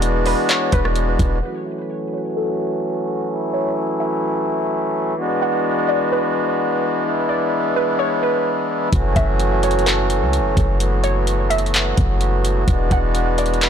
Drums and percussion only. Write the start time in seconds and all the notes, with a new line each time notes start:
0.02 closed hi-hat
0.26 open hi-hat
0.49 clap, closed hi-hat
0.72 kick, closed hi-hat
0.85 cross-stick
0.96 closed hi-hat
1.19 kick, closed hi-hat
8.93 kick, closed hi-hat
9.16 kick, closed hi-hat
9.40 closed hi-hat
9.63 closed hi-hat
9.71 closed hi-hat
9.79 closed hi-hat
9.87 clap, closed hi-hat
10.10 closed hi-hat
10.33 closed hi-hat
10.57 kick, closed hi-hat
10.80 closed hi-hat
11.04 closed hi-hat
11.27 closed hi-hat
11.51 closed hi-hat
11.58 closed hi-hat
11.66 closed hi-hat
11.74 clap, closed hi-hat
11.97 kick, closed hi-hat
12.21 closed hi-hat
12.45 closed hi-hat
12.68 kick, closed hi-hat
12.91 kick, closed hi-hat
13.15 closed hi-hat
13.38 closed hi-hat
13.46 closed hi-hat
13.54 closed hi-hat
13.61 clap, closed hi-hat